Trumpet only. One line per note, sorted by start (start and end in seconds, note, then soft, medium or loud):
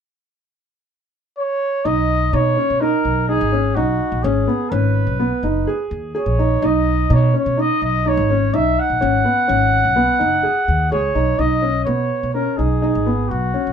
1.38 1.87 C#5 medium
1.85 2.35 D#5 medium
2.34 2.82 C#5 medium
2.80 3.28 A#4 medium
3.28 3.77 G#4 medium
3.75 4.24 F#4 medium
4.23 4.72 G#4 medium
4.70 5.88 B4 medium
6.17 6.67 C#5 medium
6.65 7.15 D#5 medium
7.13 7.36 C#5 medium
7.38 7.62 C#5 medium
7.60 7.83 D#5 medium
7.84 8.09 D#5 medium
8.08 8.56 C#5 medium
8.54 8.80 E5 medium
8.79 10.91 F#5 loud
10.92 11.40 C#5 medium
11.39 11.84 D#5 medium
11.84 12.30 C#5 medium
12.34 12.58 A#4 medium
12.57 13.30 G#4 medium
13.29 13.73 F#4 medium